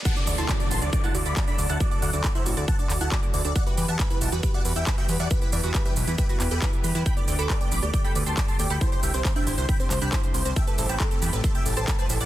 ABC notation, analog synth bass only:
X:1
M:4/4
L:1/16
Q:1/4=137
K:Dmix
V:1 name="Analog synth bass" clef=bass
z2 D,, D,, z2 A,,, D,, z2 D,, D,, z2 D,, D,, | z2 D,, D,, z2 A,,, D,, z2 D,, D,, z2 D,, D,, | z2 E,, E,, z2 B,,, E,, z2 E,, E,, z2 E,, E,, | z2 E,, E,, z2 B,,, E,, z2 E,, E,, z2 E,, E,, |
z2 D,, D,, z2 A,,, D,, z2 D,, D,, z2 D,, D,, | z2 C,, C,, z2 G,,, C,, z2 C,, C,, z2 C,, C,, | z2 A,,, A,,, z2 E,, A,,, z2 A,,, A,,, z2 A,,, A,,, |]